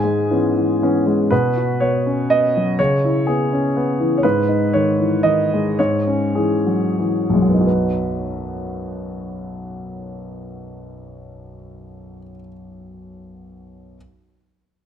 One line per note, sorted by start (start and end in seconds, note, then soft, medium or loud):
0.00 1.28 G#2 soft
0.00 0.45 G#3 soft
0.00 0.77 G#4 soft
0.00 0.80 G#5 medium
0.31 0.53 E3 soft
0.31 0.53 B3 soft
0.31 0.53 C#4 soft
0.56 0.81 E3 soft
0.82 1.04 E3 soft
0.82 1.04 B3 soft
0.82 1.05 C#4 soft
1.06 1.31 G#3 soft
1.31 2.75 B2 soft
1.31 1.80 B4 medium
1.57 1.96 F#4 soft
1.80 2.20 B3 soft
1.80 2.29 C#5 medium
2.07 2.30 C#4 soft
2.30 2.69 B3 soft
2.30 2.79 D#5 medium
2.56 2.79 F#3 soft
2.79 4.20 C#3 soft
2.79 3.27 C#5 medium
3.04 3.42 E4 soft
3.27 3.66 B3 soft
3.27 4.17 G#4 soft
3.53 3.76 C#4 soft
3.77 4.15 B3 soft
4.00 4.24 E3 soft
4.17 4.24 C#5 soft
4.23 5.74 G#2 soft
4.23 4.73 B4 medium
4.49 4.88 D#4 soft
4.73 5.15 D#3 soft
4.73 5.24 C#5 medium
5.00 5.25 E3 soft
5.23 5.67 D#3 soft
5.23 5.77 D#5 medium
5.53 5.79 G#3 soft
5.79 7.63 G#2 soft
5.79 6.35 C#5 medium
6.07 6.54 C#4 soft
6.35 6.85 E3 soft
6.35 7.66 G#4 soft
6.67 6.98 F#3 soft
6.99 7.53 E3 soft
7.30 12.16 B1 soft
7.34 12.23 F#2 soft
7.34 7.67 G#3 soft
7.42 12.29 F#3 soft
7.48 12.35 B3 soft
7.54 12.41 D#4 soft
7.60 12.47 F#4 soft
7.66 12.52 B4 soft